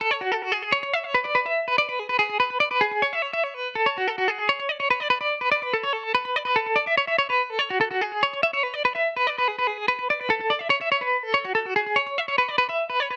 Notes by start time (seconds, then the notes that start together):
0.01 A4
0.11 C#5
0.21 F#4
0.32 A4
0.42 F#4
0.52 G#4
0.72 C#5
0.94 E5
1.04 C#5
1.14 B4
1.24 D5
1.35 B4
1.46 E5
1.68 B4
1.78 D5
1.89 B4
1.99 G#4
2.09 B4
2.19 G#4
2.40 B4
2.60 D5
2.71 B4
2.81 G#4
3.02 C#5
3.13 E5
3.22 C#5
3.33 E5
3.44 C#5
3.54 B4
3.75 A4
3.86 C#5
3.98 F#4
4.08 A4
4.18 F#4
4.28 G#4
4.49 C#5
4.69 D5
4.80 C#5
4.90 B4
5.00 D5
5.10 B4
5.21 D5
5.41 B4
5.52 D5
5.63 B4
5.73 A4
5.83 C#5
5.93 A4
6.15 B4
6.36 D5
6.45 B4
6.56 A4
6.76 D5
6.87 E5
6.97 C#5
7.07 E5
7.18 C#5
7.30 B4
7.50 A4
7.59 C#5
7.70 F#4
7.81 A4
7.91 F#4
8.01 G#4
8.23 C#5
8.43 E5
8.53 C#5
8.63 B4
8.74 D5
8.85 B4
8.95 E5
9.16 B4
9.27 D5
9.38 B4
9.48 G#4
9.59 B4
9.67 G#4
9.88 B4
10.10 D5
10.20 B4
10.30 A4
10.50 D5
10.59 E5
10.70 C#5
10.81 E5
10.92 C#5
11.01 B4
11.23 A4
11.34 C#5
11.45 F#4
11.55 A4
11.66 F#4
11.76 G#4
11.96 C#5
12.18 E5
12.28 C#5
12.38 B4
12.48 D5
12.58 B4
12.69 E5
12.90 B4
13.00 C#5
13.10 B4